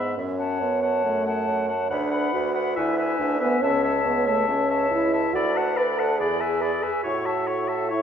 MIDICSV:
0, 0, Header, 1, 6, 480
1, 0, Start_track
1, 0, Key_signature, 3, "major"
1, 0, Tempo, 429492
1, 199, Time_signature, 4, 2, 24, 8
1, 8963, End_track
2, 0, Start_track
2, 0, Title_t, "Flute"
2, 0, Program_c, 0, 73
2, 0, Note_on_c, 0, 83, 34
2, 190, Note_off_c, 0, 83, 0
2, 429, Note_on_c, 0, 81, 34
2, 916, Note_off_c, 0, 81, 0
2, 926, Note_on_c, 0, 81, 34
2, 1404, Note_off_c, 0, 81, 0
2, 1411, Note_on_c, 0, 81, 36
2, 1885, Note_off_c, 0, 81, 0
2, 1895, Note_on_c, 0, 81, 35
2, 2122, Note_off_c, 0, 81, 0
2, 2129, Note_on_c, 0, 83, 37
2, 2362, Note_off_c, 0, 83, 0
2, 2369, Note_on_c, 0, 83, 35
2, 2837, Note_off_c, 0, 83, 0
2, 2843, Note_on_c, 0, 83, 38
2, 3085, Note_off_c, 0, 83, 0
2, 3093, Note_on_c, 0, 80, 37
2, 3324, Note_off_c, 0, 80, 0
2, 3331, Note_on_c, 0, 80, 43
2, 3798, Note_off_c, 0, 80, 0
2, 3809, Note_on_c, 0, 80, 44
2, 4044, Note_off_c, 0, 80, 0
2, 4051, Note_on_c, 0, 81, 43
2, 4287, Note_off_c, 0, 81, 0
2, 4292, Note_on_c, 0, 81, 45
2, 4762, Note_off_c, 0, 81, 0
2, 4776, Note_on_c, 0, 81, 39
2, 5245, Note_off_c, 0, 81, 0
2, 5255, Note_on_c, 0, 81, 45
2, 5518, Note_off_c, 0, 81, 0
2, 5734, Note_on_c, 0, 81, 41
2, 5965, Note_off_c, 0, 81, 0
2, 5974, Note_on_c, 0, 83, 50
2, 6206, Note_on_c, 0, 81, 43
2, 6223, Note_off_c, 0, 83, 0
2, 6446, Note_on_c, 0, 83, 40
2, 6462, Note_off_c, 0, 81, 0
2, 6686, Note_on_c, 0, 81, 40
2, 6702, Note_off_c, 0, 83, 0
2, 6909, Note_off_c, 0, 81, 0
2, 6915, Note_on_c, 0, 83, 45
2, 7157, Note_on_c, 0, 80, 41
2, 7174, Note_off_c, 0, 83, 0
2, 7394, Note_on_c, 0, 83, 43
2, 7410, Note_off_c, 0, 80, 0
2, 7637, Note_on_c, 0, 80, 42
2, 7654, Note_off_c, 0, 83, 0
2, 7867, Note_off_c, 0, 80, 0
2, 7873, Note_on_c, 0, 85, 48
2, 8110, Note_on_c, 0, 81, 43
2, 8126, Note_off_c, 0, 85, 0
2, 8352, Note_on_c, 0, 85, 40
2, 8369, Note_off_c, 0, 81, 0
2, 8592, Note_on_c, 0, 81, 37
2, 8609, Note_off_c, 0, 85, 0
2, 8829, Note_off_c, 0, 81, 0
2, 8836, Note_on_c, 0, 85, 39
2, 8963, Note_off_c, 0, 85, 0
2, 8963, End_track
3, 0, Start_track
3, 0, Title_t, "Oboe"
3, 0, Program_c, 1, 68
3, 0, Note_on_c, 1, 76, 33
3, 194, Note_off_c, 1, 76, 0
3, 435, Note_on_c, 1, 78, 37
3, 916, Note_off_c, 1, 78, 0
3, 923, Note_on_c, 1, 78, 32
3, 1402, Note_off_c, 1, 78, 0
3, 1416, Note_on_c, 1, 78, 33
3, 1878, Note_off_c, 1, 78, 0
3, 1885, Note_on_c, 1, 78, 36
3, 2120, Note_off_c, 1, 78, 0
3, 2126, Note_on_c, 1, 78, 39
3, 2355, Note_off_c, 1, 78, 0
3, 2361, Note_on_c, 1, 78, 45
3, 2839, Note_off_c, 1, 78, 0
3, 2846, Note_on_c, 1, 78, 40
3, 3077, Note_off_c, 1, 78, 0
3, 3084, Note_on_c, 1, 76, 38
3, 3320, Note_off_c, 1, 76, 0
3, 3327, Note_on_c, 1, 76, 42
3, 3795, Note_off_c, 1, 76, 0
3, 3802, Note_on_c, 1, 76, 40
3, 4041, Note_off_c, 1, 76, 0
3, 4059, Note_on_c, 1, 76, 45
3, 4281, Note_off_c, 1, 76, 0
3, 4288, Note_on_c, 1, 76, 47
3, 4760, Note_off_c, 1, 76, 0
3, 4778, Note_on_c, 1, 76, 41
3, 5246, Note_off_c, 1, 76, 0
3, 5259, Note_on_c, 1, 76, 41
3, 5722, Note_off_c, 1, 76, 0
3, 5737, Note_on_c, 1, 76, 41
3, 5966, Note_off_c, 1, 76, 0
3, 5980, Note_on_c, 1, 74, 52
3, 6227, Note_on_c, 1, 78, 47
3, 6243, Note_off_c, 1, 74, 0
3, 6451, Note_on_c, 1, 74, 43
3, 6468, Note_off_c, 1, 78, 0
3, 6698, Note_on_c, 1, 78, 39
3, 6715, Note_off_c, 1, 74, 0
3, 6922, Note_off_c, 1, 78, 0
3, 6929, Note_on_c, 1, 74, 45
3, 7166, Note_on_c, 1, 76, 41
3, 7182, Note_off_c, 1, 74, 0
3, 7400, Note_on_c, 1, 74, 38
3, 7417, Note_off_c, 1, 76, 0
3, 7630, Note_on_c, 1, 76, 39
3, 7647, Note_off_c, 1, 74, 0
3, 7855, Note_off_c, 1, 76, 0
3, 7862, Note_on_c, 1, 73, 47
3, 8112, Note_on_c, 1, 76, 48
3, 8128, Note_off_c, 1, 73, 0
3, 8350, Note_on_c, 1, 73, 41
3, 8367, Note_off_c, 1, 76, 0
3, 8588, Note_on_c, 1, 76, 37
3, 8604, Note_off_c, 1, 73, 0
3, 8823, Note_off_c, 1, 76, 0
3, 8830, Note_on_c, 1, 73, 39
3, 8963, Note_off_c, 1, 73, 0
3, 8963, End_track
4, 0, Start_track
4, 0, Title_t, "Clarinet"
4, 0, Program_c, 2, 71
4, 0, Note_on_c, 2, 71, 29
4, 191, Note_off_c, 2, 71, 0
4, 435, Note_on_c, 2, 73, 35
4, 914, Note_off_c, 2, 73, 0
4, 920, Note_on_c, 2, 73, 37
4, 1401, Note_off_c, 2, 73, 0
4, 1408, Note_on_c, 2, 73, 36
4, 1884, Note_off_c, 2, 73, 0
4, 1892, Note_on_c, 2, 73, 34
4, 2120, Note_off_c, 2, 73, 0
4, 2127, Note_on_c, 2, 71, 37
4, 2365, Note_off_c, 2, 71, 0
4, 2370, Note_on_c, 2, 71, 41
4, 2843, Note_off_c, 2, 71, 0
4, 2852, Note_on_c, 2, 71, 43
4, 3080, Note_off_c, 2, 71, 0
4, 3087, Note_on_c, 2, 71, 36
4, 3316, Note_off_c, 2, 71, 0
4, 3323, Note_on_c, 2, 71, 43
4, 3794, Note_off_c, 2, 71, 0
4, 3804, Note_on_c, 2, 71, 41
4, 4040, Note_off_c, 2, 71, 0
4, 4046, Note_on_c, 2, 73, 42
4, 4279, Note_off_c, 2, 73, 0
4, 4286, Note_on_c, 2, 73, 43
4, 4759, Note_off_c, 2, 73, 0
4, 4768, Note_on_c, 2, 73, 45
4, 5241, Note_off_c, 2, 73, 0
4, 5250, Note_on_c, 2, 73, 44
4, 5714, Note_off_c, 2, 73, 0
4, 5721, Note_on_c, 2, 73, 38
4, 5955, Note_off_c, 2, 73, 0
4, 5962, Note_on_c, 2, 69, 46
4, 6201, Note_on_c, 2, 71, 44
4, 6217, Note_off_c, 2, 69, 0
4, 6433, Note_on_c, 2, 69, 44
4, 6450, Note_off_c, 2, 71, 0
4, 6674, Note_on_c, 2, 71, 45
4, 6690, Note_off_c, 2, 69, 0
4, 6898, Note_off_c, 2, 71, 0
4, 6905, Note_on_c, 2, 68, 45
4, 7155, Note_on_c, 2, 71, 42
4, 7172, Note_off_c, 2, 68, 0
4, 7390, Note_on_c, 2, 68, 45
4, 7406, Note_off_c, 2, 71, 0
4, 7634, Note_on_c, 2, 71, 41
4, 7651, Note_off_c, 2, 68, 0
4, 7858, Note_off_c, 2, 71, 0
4, 7865, Note_on_c, 2, 64, 43
4, 8109, Note_on_c, 2, 69, 42
4, 8126, Note_off_c, 2, 64, 0
4, 8348, Note_on_c, 2, 64, 37
4, 8365, Note_off_c, 2, 69, 0
4, 8589, Note_on_c, 2, 69, 40
4, 8606, Note_off_c, 2, 64, 0
4, 8829, Note_off_c, 2, 69, 0
4, 8836, Note_on_c, 2, 64, 41
4, 8963, Note_off_c, 2, 64, 0
4, 8963, End_track
5, 0, Start_track
5, 0, Title_t, "French horn"
5, 0, Program_c, 3, 60
5, 0, Note_on_c, 3, 59, 49
5, 186, Note_off_c, 3, 59, 0
5, 192, Note_on_c, 3, 61, 51
5, 686, Note_on_c, 3, 59, 47
5, 703, Note_off_c, 3, 61, 0
5, 1162, Note_off_c, 3, 59, 0
5, 1169, Note_on_c, 3, 57, 51
5, 1879, Note_off_c, 3, 57, 0
5, 2126, Note_on_c, 3, 62, 57
5, 2604, Note_on_c, 3, 66, 63
5, 2621, Note_off_c, 3, 62, 0
5, 3093, Note_on_c, 3, 64, 65
5, 3110, Note_off_c, 3, 66, 0
5, 3566, Note_on_c, 3, 62, 62
5, 3583, Note_off_c, 3, 64, 0
5, 3795, Note_off_c, 3, 62, 0
5, 3802, Note_on_c, 3, 59, 67
5, 4042, Note_on_c, 3, 61, 64
5, 4059, Note_off_c, 3, 59, 0
5, 4515, Note_off_c, 3, 61, 0
5, 4522, Note_on_c, 3, 59, 59
5, 4768, Note_on_c, 3, 57, 59
5, 4785, Note_off_c, 3, 59, 0
5, 5001, Note_off_c, 3, 57, 0
5, 5008, Note_on_c, 3, 61, 66
5, 5479, Note_off_c, 3, 61, 0
5, 5486, Note_on_c, 3, 64, 77
5, 5962, Note_on_c, 3, 66, 70
5, 5978, Note_off_c, 3, 64, 0
5, 6435, Note_off_c, 3, 66, 0
5, 6442, Note_on_c, 3, 71, 74
5, 6549, Note_off_c, 3, 71, 0
5, 6676, Note_on_c, 3, 69, 65
5, 6908, Note_off_c, 3, 69, 0
5, 6915, Note_on_c, 3, 68, 71
5, 7623, Note_off_c, 3, 68, 0
5, 7636, Note_on_c, 3, 68, 68
5, 7744, Note_off_c, 3, 68, 0
5, 7869, Note_on_c, 3, 66, 65
5, 8830, Note_on_c, 3, 64, 60
5, 8847, Note_off_c, 3, 66, 0
5, 8963, Note_off_c, 3, 64, 0
5, 8963, End_track
6, 0, Start_track
6, 0, Title_t, "Bassoon"
6, 0, Program_c, 4, 70
6, 0, Note_on_c, 4, 44, 37
6, 141, Note_off_c, 4, 44, 0
6, 199, Note_on_c, 4, 42, 42
6, 630, Note_off_c, 4, 42, 0
6, 682, Note_on_c, 4, 42, 41
6, 1116, Note_off_c, 4, 42, 0
6, 1169, Note_on_c, 4, 42, 47
6, 1597, Note_off_c, 4, 42, 0
6, 1654, Note_on_c, 4, 42, 45
6, 2078, Note_off_c, 4, 42, 0
6, 2131, Note_on_c, 4, 38, 53
6, 2555, Note_off_c, 4, 38, 0
6, 2618, Note_on_c, 4, 38, 49
6, 3041, Note_off_c, 4, 38, 0
6, 3094, Note_on_c, 4, 38, 49
6, 3514, Note_off_c, 4, 38, 0
6, 3577, Note_on_c, 4, 38, 51
6, 3995, Note_off_c, 4, 38, 0
6, 4056, Note_on_c, 4, 37, 56
6, 4478, Note_off_c, 4, 37, 0
6, 4534, Note_on_c, 4, 37, 55
6, 4956, Note_off_c, 4, 37, 0
6, 5012, Note_on_c, 4, 37, 50
6, 5435, Note_off_c, 4, 37, 0
6, 5491, Note_on_c, 4, 37, 51
6, 5910, Note_off_c, 4, 37, 0
6, 5970, Note_on_c, 4, 38, 51
6, 6920, Note_on_c, 4, 40, 56
6, 6937, Note_off_c, 4, 38, 0
6, 7695, Note_off_c, 4, 40, 0
6, 7885, Note_on_c, 4, 45, 48
6, 8963, Note_off_c, 4, 45, 0
6, 8963, End_track
0, 0, End_of_file